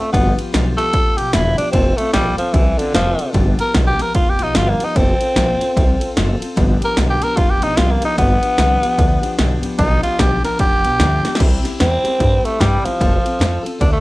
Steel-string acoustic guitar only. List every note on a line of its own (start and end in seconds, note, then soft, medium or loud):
0.00 0.13 C4 soft
0.00 0.12 F4 soft
0.00 0.13 A4 soft
0.12 0.37 G2 medium
0.12 0.37 D3 medium
0.12 0.38 F3 medium
0.12 0.37 B3 medium
0.12 0.36 F4 medium
0.12 0.35 G4 medium
0.36 0.52 F3 soft
0.36 0.53 B3 soft
0.36 0.53 F4 soft
0.36 0.52 G4 medium
0.52 0.77 G2 medium
0.52 0.78 D3 medium
0.52 0.78 F3 medium
0.52 0.78 B3 medium
0.52 0.77 F4 loud
0.52 0.76 G4 medium
0.77 0.91 F3 soft
0.77 0.92 B3 soft
0.77 0.93 F4 medium
0.77 0.93 G4 medium
0.92 1.17 F3 medium
0.92 1.18 B3 medium
0.92 1.17 F4 medium
0.92 1.16 G4 medium
1.17 1.32 F3 soft
1.17 1.33 B3 soft
1.17 1.33 F4 medium
1.17 1.33 G4 medium
1.32 1.57 G2 medium
1.32 1.58 D3 medium
1.32 1.58 F3 medium
1.32 1.58 B3 medium
1.32 1.57 F4 medium
1.32 1.56 G4 loud
1.57 1.71 F3 soft
1.57 1.73 B3 soft
1.57 1.73 F4 soft
1.57 1.73 G4 medium
1.73 1.98 F3 medium
1.73 1.98 C4 medium
1.73 1.98 F4 medium
1.73 1.96 A4 medium
1.97 2.12 C4 soft
1.97 2.13 F4 medium
1.97 2.13 A4 medium
2.13 2.38 F3 medium
2.13 2.38 C4 medium
2.13 2.38 F4 medium
2.13 2.36 A4 medium
2.37 2.52 C4 soft
2.37 2.53 F4 soft
2.37 2.53 A4 medium
2.52 2.78 F3 medium
2.52 2.79 C4 medium
2.52 2.78 F4 medium
2.52 2.76 A4 medium
2.77 2.93 C4 soft
2.77 2.94 F4 medium
2.77 2.94 A4 medium
2.93 3.18 F3 medium
2.93 3.19 C4 medium
2.93 3.18 F4 loud
2.93 3.16 A4 loud
3.18 3.34 C4 soft
3.18 3.34 F4 soft
3.18 3.34 A4 medium
3.33 3.58 G2 medium
3.33 3.59 D3 medium
3.33 3.59 F3 medium
3.33 3.59 B3 medium
3.33 3.58 F4 medium
3.33 3.57 G4 loud
3.58 3.73 F3 soft
3.58 3.74 B3 soft
3.58 3.74 F4 medium
3.58 3.74 G4 medium
3.73 3.99 G2 medium
3.73 3.99 D3 medium
3.73 3.99 F3 medium
3.73 3.99 B3 medium
3.73 3.98 F4 medium
3.73 3.96 G4 medium
3.98 4.13 F3 soft
3.98 4.14 B3 medium
3.98 4.15 F4 medium
3.98 4.14 G4 medium
4.14 4.39 F3 medium
4.14 4.40 B3 medium
4.14 4.39 F4 medium
4.14 4.38 G4 medium
4.39 4.54 F3 soft
4.39 4.55 B3 medium
4.39 4.56 F4 medium
4.39 4.55 G4 medium
4.55 4.80 G2 medium
4.55 4.80 D3 medium
4.55 4.80 F3 medium
4.55 4.81 B3 medium
4.55 4.80 F4 medium
4.55 4.78 G4 medium
4.80 4.94 F3 soft
4.80 4.96 B3 soft
4.80 4.96 F4 soft
4.80 4.95 G4 medium
4.95 5.20 F3 medium
4.95 5.21 C4 medium
4.95 5.20 F4 medium
4.95 5.19 A4 medium
5.20 5.35 C4 soft
5.20 5.36 F4 soft
5.20 5.36 A4 medium
5.35 5.60 F3 medium
5.35 5.61 C4 medium
5.35 5.61 F4 medium
5.35 5.59 A4 medium
5.60 5.76 C4 medium
5.60 5.77 F4 medium
5.60 5.76 A4 medium
5.76 6.01 F3 medium
5.76 6.01 C4 medium
5.76 6.01 F4 medium
5.76 5.99 A4 medium
6.00 6.15 C4 medium
6.00 6.16 F4 medium
6.00 6.16 A4 medium
6.16 6.41 F3 medium
6.16 6.41 C4 loud
6.16 6.41 F4 medium
6.16 6.39 A4 loud
6.40 6.57 C4 soft
6.40 6.57 F4 medium
6.40 6.56 A4 medium
6.56 6.81 G2 medium
6.56 6.81 D3 medium
6.56 6.82 F3 medium
6.56 6.82 B3 loud
6.56 6.81 D4 loud
6.56 6.79 G4 loud
6.81 6.96 F3 soft
6.81 6.97 B3 medium
6.81 6.97 D4 medium
6.81 6.97 G4 medium
6.96 7.21 G2 medium
6.96 7.22 D3 medium
6.96 7.22 F3 medium
6.96 7.22 B3 medium
6.96 7.21 D4 medium
6.96 7.20 G4 medium
7.21 7.35 F3 soft
7.21 7.36 B3 soft
7.21 7.37 D4 soft
7.21 7.37 G4 medium
7.36 7.61 F3 medium
7.36 7.62 B3 medium
7.36 7.61 D4 medium
7.36 7.59 G4 medium
7.61 7.76 F3 soft
7.61 7.76 B3 soft
7.61 7.77 D4 medium
7.61 7.77 G4 medium
7.76 8.02 G2 medium
7.76 8.02 D3 medium
7.76 8.02 F3 medium
7.76 8.02 B3 medium
7.76 8.01 D4 loud
7.76 7.99 G4 medium
8.01 8.16 F3 soft
8.01 8.17 B3 soft
8.01 8.17 D4 soft
8.01 8.17 G4 medium
8.16 8.42 G2 medium
8.16 8.42 D3 medium
8.16 8.42 F3 medium
8.16 8.42 B3 medium
8.16 8.41 D4 medium
8.16 8.40 G4 medium
8.41 8.57 F3 soft
8.41 8.57 B3 soft
8.41 8.57 D4 medium
8.41 8.58 G4 medium
8.57 8.82 G2 medium
8.57 8.83 D3 medium
8.57 8.83 F3 medium
8.57 8.82 B3 medium
8.57 8.81 D4 medium
8.57 8.80 G4 medium
8.81 8.96 F3 medium
8.81 8.97 B3 soft
8.81 8.98 D4 medium
8.81 8.98 G4 medium
8.98 9.23 F3 medium
8.98 9.22 B3 medium
8.98 9.22 D4 medium
8.98 9.20 G4 medium
9.22 9.37 F3 medium
9.22 9.38 B3 medium
9.22 9.38 D4 medium
9.22 9.38 G4 medium
9.38 9.63 G2 medium
9.38 9.63 D3 medium
9.38 9.63 F3 loud
9.38 9.63 B3 loud
9.38 9.62 D4 loud
9.38 9.61 G4 loud
9.62 9.78 F3 medium
9.62 9.78 B3 soft
9.62 9.79 D4 medium
9.62 9.78 G4 medium
9.78 10.03 G2 medium
9.78 10.03 D3 medium
9.78 10.04 F3 medium
9.78 10.04 B3 medium
9.78 10.03 D4 medium
9.78 10.01 G4 medium
10.02 10.18 F3 soft
10.02 10.19 B3 soft
10.02 10.19 D4 medium
10.02 10.19 G4 medium
10.18 10.43 G2 medium
10.18 10.44 D3 medium
10.18 10.44 F3 medium
10.18 10.44 B3 medium
10.18 10.43 D4 loud
10.18 10.41 G4 medium
10.43 10.57 F3 soft
10.43 10.58 B3 medium
10.43 10.59 D4 medium
10.43 10.59 G4 medium
10.58 10.83 F3 medium
10.58 10.84 B3 medium
10.58 10.83 D4 medium
10.58 10.81 G4 medium
10.83 10.98 F3 soft
10.83 10.99 B3 soft
10.83 11.00 D4 soft
10.83 10.99 G4 medium
10.99 11.24 G2 medium
10.99 11.24 D3 loud
10.99 11.24 F3 medium
10.99 11.25 B3 medium
10.99 11.24 D4 medium
10.99 11.22 G4 medium
11.23 11.40 F3 soft
11.23 11.40 B3 soft
11.23 11.40 D4 medium
11.23 11.39 G4 medium
11.39 11.64 C3 medium
11.39 11.65 G3 loud
11.39 11.65 C4 medium
11.39 11.64 E4 loud
11.39 11.62 G4 loud
11.64 11.79 C4 soft
11.64 11.80 E4 medium
11.64 11.80 G4 medium
11.79 12.04 C3 medium
11.79 12.05 G3 medium
11.79 12.05 C4 medium
11.79 12.04 E4 medium
11.79 12.03 G4 medium
12.04 12.18 C4 soft
12.04 12.19 E4 medium
12.04 12.20 G4 medium
12.18 12.44 G3 medium
12.18 12.44 C4 medium
12.18 12.44 E4 medium
12.18 12.42 G4 medium
12.43 12.59 C4 soft
12.43 12.60 E4 soft
12.43 12.60 G4 medium
12.60 12.85 C3 medium
12.60 12.85 G3 medium
12.60 12.85 C4 medium
12.60 12.84 E4 medium
12.60 12.82 G4 medium
12.84 12.99 C4 soft
12.84 13.00 E4 soft
12.84 13.00 G4 medium
12.99 13.24 F3 medium
12.99 13.25 C4 medium
12.99 13.24 F4 loud
12.99 13.22 A4 medium
13.23 13.38 C4 soft
13.23 13.39 F4 medium
13.23 13.40 A4 medium
13.39 13.64 F3 medium
13.39 13.65 C4 loud
13.39 13.63 F4 loud
13.39 13.62 A4 medium
13.63 13.79 C4 medium
13.63 13.80 F4 medium
13.63 13.80 A4 medium
13.78 14.00 F3 medium
13.78 14.00 C4 medium
13.78 14.00 F4 medium
13.78 14.00 A4 medium